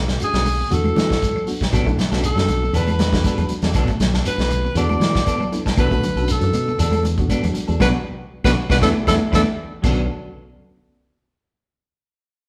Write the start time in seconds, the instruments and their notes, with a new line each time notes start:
Already playing: fingered electric bass B1, clean electric guitar F#3
0.08 snare
0.20 reed electric piano A3 C#4 D4 F#4, closed hi-hat, claves, shekere
0.24 alto saxophone G#4
0.33 fingered electric bass B1, snare, closed hi-hat, shekere
0.45 clean electric guitar D3, open hi-hat, high conga, claves, shekere
0.61 clean electric guitar B2, shekere
0.70 fingered electric bass E2, reed electric piano A3 B3 D4 F#4, closed hi-hat, low conga, shekere
0.74 alto saxophone A4
0.84 high conga, claves, shekere
0.96 clean electric guitar D3, fingered electric bass E3, snare, closed hi-hat, high conga, shekere
1.10 kick, snare, shekere
1.21 kick, closed hi-hat, high conga, shekere
1.35 clean electric guitar F#3, high conga, claves, shekere
1.47 reed electric piano A3 B3 D4 F#4, open hi-hat, shekere
1.61 kick, snare, closed hi-hat, high conga, shekere
1.72 fingered electric bass B1, clean electric guitar F#3 B3 D4 A4, reed electric piano A3 C#4 D4 F#4, kick, snare, closed hi-hat, low conga, claves, shekere
1.86 fingered electric bass B1, reed electric piano A3 C#4 D4 E4, clean electric guitar A3, muted clean electric guitar stroke, kick, closed hi-hat, shekere
1.97 clean electric guitar F#3, muted clean electric guitar stroke, snare, closed hi-hat, low conga, shekere
2.11 fingered electric bass B1, reed electric piano A3 C#4 D4 F#4, clean electric guitar B3 D4 A4, snare, closed hi-hat, shekere
2.23 alto saxophone A4, muted clean electric guitar stroke, closed hi-hat, claves, shekere
2.36 fingered electric bass F#2, clean electric guitar E3, snare, closed hi-hat, shekere
2.48 fingered electric bass B1, clean electric guitar D3, closed hi-hat, high conga, claves, shekere
2.62 clean electric guitar B2, muted clean electric guitar stroke, shekere
2.73 fingered electric bass E2, clean electric guitar B3 D4 A4, alto saxophone B4, closed hi-hat, low conga, shekere
2.87 muted clean electric guitar stroke, closed hi-hat, high conga, claves
2.91 shekere
2.99 clean electric guitar D3, muted clean electric guitar stroke, snare, closed hi-hat, high conga, shekere
3.11 reed electric piano A3 B3 D4 F#4, kick, snare, closed hi-hat
3.16 shekere
3.24 clean electric guitar B3 D4 A4, kick, snare, closed hi-hat, high conga, shekere
3.38 fingered electric bass E2, clean electric guitar F#3, muted clean electric guitar stroke, closed hi-hat, high conga, claves, shekere
3.49 muted fingered electric bass stroke, muted clean electric guitar stroke, closed hi-hat, high conga, shekere
3.62 fingered electric bass E2, clean electric guitar D4 A4, snare, closed hi-hat, high conga, shekere
3.74 fingered electric bass B1, clean electric guitar F#3 B3 D4 A4, kick, closed hi-hat, low conga, claves, shekere
3.87 clean electric guitar A3, muted clean electric guitar stroke, kick, closed hi-hat, shekere
4.00 fingered electric bass B1, clean electric guitar F#3, muted clean electric guitar stroke, snare, closed hi-hat, low conga, shekere
4.14 clean electric guitar B3 D4 A4, snare, shekere
4.25 reed electric piano A3 C#4 D4 F#4, alto saxophone B4, muted clean electric guitar stroke, closed hi-hat, claves, shekere
4.38 fingered electric bass B1, clean electric guitar E3, snare, closed hi-hat, shekere
4.50 clean electric guitar D3, closed hi-hat, high conga, claves, shekere
4.65 clean electric guitar B2, muted clean electric guitar stroke, shekere
4.75 fingered electric bass E2, reed electric piano A3 B3 D4 F#4, clean electric guitar B3 D4 A4, alto saxophone D5, closed hi-hat, low conga, shekere
4.89 muted clean electric guitar stroke, high conga, claves, shekere
5.00 clean electric guitar D3, fingered electric bass E3, muted clean electric guitar stroke, snare, closed hi-hat, high conga, shekere
5.15 kick, snare, shekere
5.26 clean electric guitar B3 D4 A4, kick, closed hi-hat, high conga, shekere
5.40 clean electric guitar F#3, muted clean electric guitar stroke, high conga, claves, shekere
5.52 reed electric piano A3 B3 D4 E4, muted clean electric guitar stroke, closed hi-hat, shekere
5.65 clean electric guitar D4 A4, kick, snare, closed hi-hat, high conga, shekere
5.77 fingered electric bass B1, clean electric guitar F#3 B3 D4 A4, reed electric piano A3 C#4 D4 F#4, alto saxophone B4, kick, closed hi-hat, low conga, claves, shekere
5.91 fingered electric bass B1, clean electric guitar A3, reed electric piano A3 C#4 D4 F#4, muted clean electric guitar stroke, kick, closed hi-hat, shekere
6.03 clean electric guitar F#3, muted clean electric guitar stroke, closed hi-hat, low conga, shekere
6.16 fingered electric bass B1, reed electric piano A3 C#4 D4 F#4, clean electric guitar A4, muted clean electric guitar stroke, closed hi-hat, shekere
6.28 alto saxophone A4, muted clean electric guitar stroke, closed hi-hat, claves, shekere
6.41 fingered electric bass F#2, clean electric guitar E3, closed hi-hat, shekere
6.53 fingered electric bass B2, clean electric guitar D3, closed hi-hat, high conga, claves, shekere
6.68 clean electric guitar B2, muted clean electric guitar stroke, shekere
6.78 fingered electric bass E2, clean electric guitar D4 A4, alto saxophone A4, muted clean electric guitar stroke, closed hi-hat, low conga, shekere
6.92 muted clean electric guitar stroke, closed hi-hat, high conga, claves, shekere
7.03 clean electric guitar D3, muted clean electric guitar stroke, closed hi-hat, high conga, shekere
7.18 reed electric piano A3 B3 D4 F#4, kick, closed hi-hat, shekere
7.29 clean electric guitar B3 D4 A4, kick, closed hi-hat, high conga, shekere
7.43 fingered electric bass E2, clean electric guitar F#3, muted clean electric guitar stroke, closed hi-hat, high conga, claves, shekere
7.54 muted clean electric guitar stroke, muted fingered electric bass stroke, closed hi-hat, high conga, shekere
7.68 fingered electric bass E2, clean electric guitar D4 A4, closed hi-hat, high conga, shekere
7.80 fingered electric bass B1, clean electric guitar B2 D3 F#3 B3 D4 F#4, reed electric piano B3 D4 F#4, alto saxophone B4, kick, snare, high conga, claves, shekere
8.44 fingered electric bass B1, clean electric guitar B2 D3 F#3 B3 D4 F#4, reed electric piano B3 D4 F#4, alto saxophone B4, kick, snare, high conga, claves, shekere
8.69 fingered electric bass B1, clean electric guitar B2 D3 F#3 B3 D4 F#4, reed electric piano B3 D4 F#4, alto saxophone B4, kick, snare, high conga, claves, shekere
8.81 fingered electric bass E2, clean electric guitar D3 E3 A3 B3 D4 E4, reed electric piano B3 D4 E4, alto saxophone A4, kick, snare, high conga, claves, shekere
9.07 fingered electric bass E2, clean electric guitar D3 E3 A3 B3 D4 E4, reed electric piano B3 D4 E4, alto saxophone A4, kick, snare, high conga, claves, shekere
9.32 fingered electric bass E2, clean electric guitar E3 A3 B3 D4 E4, reed electric piano B3 D4 E4, alto saxophone A4, kick, snare, high conga, claves, shekere
9.36 clean electric guitar D3
9.82 fingered electric bass B1, clean electric guitar B2 F#3 B3 D4 A4, reed electric piano A3 C#4 D4 F#4, kick, crash, low conga, claves, shekere